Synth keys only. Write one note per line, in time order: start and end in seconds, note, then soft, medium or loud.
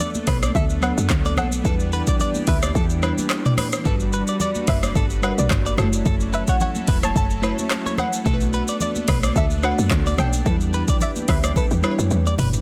0.00 0.24 F#3 medium
0.00 0.24 B3 medium
0.00 0.25 D4 medium
0.00 0.25 A4 medium
0.81 1.42 F#3 medium
0.81 1.42 B3 medium
0.81 1.42 D4 medium
0.81 1.43 A4 medium
1.64 2.44 G3 medium
1.64 2.44 D4 medium
1.64 2.45 E4 medium
1.64 2.45 B4 medium
3.01 3.62 G3 medium
3.01 3.62 D4 medium
3.01 3.63 E4 medium
3.01 3.63 B4 medium
3.84 4.64 G3 medium
3.84 4.65 D4 medium
3.84 4.65 F#4 medium
3.84 4.65 B4 loud
5.22 5.76 G3 medium
5.22 5.78 D4 medium
5.22 5.77 F#4 medium
5.22 5.31 A#4 medium
5.31 5.82 B4 medium
5.77 5.85 G3 medium
5.77 6.66 E4 medium
5.77 6.67 F#4 medium
5.77 6.67 C#5 medium
5.83 6.69 A3 medium
7.42 8.02 A3 medium
7.42 8.03 E4 medium
7.42 8.03 F#4 medium
7.42 8.04 C#5 medium
8.24 9.05 A3 medium
8.24 9.05 D4 medium
8.24 9.05 F#4 medium
8.24 8.34 A4 medium
8.34 9.09 B4 medium
9.62 10.23 A3 medium
9.62 10.23 D4 medium
9.62 10.23 F#4 medium
9.62 9.71 C#5 medium
9.71 10.27 D5 medium
10.45 10.53 F#3 medium
10.45 11.25 D4 medium
10.45 11.26 E4 medium
10.45 11.26 B4 medium
10.51 11.28 G3 medium
11.82 12.43 G3 medium
11.82 12.43 D4 medium
11.82 12.43 E4 medium
11.82 11.91 B4 medium
11.91 12.47 C#5 medium